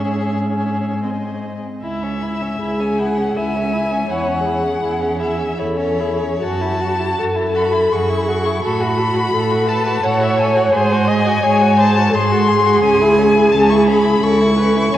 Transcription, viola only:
Already playing: C#4
1.04 C4
2.61 G#4
3.37 E5
4.09 C#5
4.46 G#4
5.59 A4
6.00 G#4
6.43 F#4
7.19 A4
7.93 G#4
8.64 F#4
9.33 A4
9.68 B4
10.04 C#5
10.73 C5
11.08 D#5
11.43 C#5
11.78 C5
12.13 G#4
14.22 A4
14.58 B4
14.93 C#5

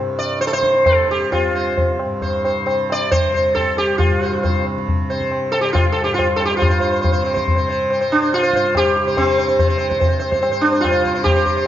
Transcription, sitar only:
0.19 D5
0.41 C5
0.47 A4
0.53 C5
0.86 A4
1.11 G4
1.32 F4
1.55 C5
2.22 C5
2.45 C5
2.66 C5
2.92 D5
3.11 C5
3.34 C5
3.55 A4
3.78 G4
3.98 F4
4.22 C5
4.43 C5
5.10 C5
5.52 A4
5.61 G4
5.73 F4
5.92 A4
6.04 G4
6.14 F4
6.36 A4
6.45 G4
6.57 F4 C5
6.69 C5
6.80 C5
6.91 C5
7.01 C5
7.12 C5
7.24 C5
7.34 C5
7.56 C5
7.69 C5
7.90 C5
8.01 C5
8.12 D4
8.22 C5
8.34 F4
8.43 C5
8.56 C5
8.77 G4
9.07 C5
9.18 C4
9.27 C5
9.38 C5
9.48 C5
9.59 C5
9.69 C5
9.78 C5
9.89 C5
10.00 C5
10.09 C5
10.19 C5
10.32 C5
10.41 C5
10.52 C5
10.61 D4
10.72 C5
10.81 F4
10.91 C5
11.04 C5
11.15 C5
11.24 G4
11.36 C5
11.45 C5
11.57 C5

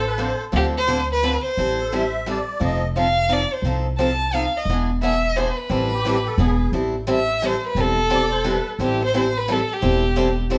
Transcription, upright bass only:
Already playing: A1
0.53 D2
1.57 A1
2.61 F1
3.62 C2
4.65 E1
5.70 A1
6.38 E1
6.72 A1
7.75 E1
8.79 A1
9.83 E1

